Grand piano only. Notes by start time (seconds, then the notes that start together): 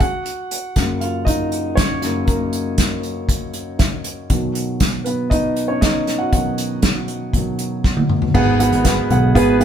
0.00 F#4 F#5
0.76 F#2 C#3 A#3
1.00 F4 F5
1.25 D#4 D#5
1.75 C#4 C#5
2.02 F#2 C#3 A#3
2.26 A#3 A#4
4.30 B2 D#3 F#3
5.04 B3 B4
5.30 D#4 D#5
5.68 C#4 C#5
5.81 D#4 D#5
6.18 F#4 F#5
6.32 B2 D#3 F#3 F#4 F#5
7.34 B2 D#3 F#3
8.34 G#2 B3 G#4 F#5
8.60 B3 G#4 F#5
8.85 B3 G#4 B4
9.11 B3 G#4 F#5
9.35 B3 G#4 B4
9.60 B3 G#4 F#5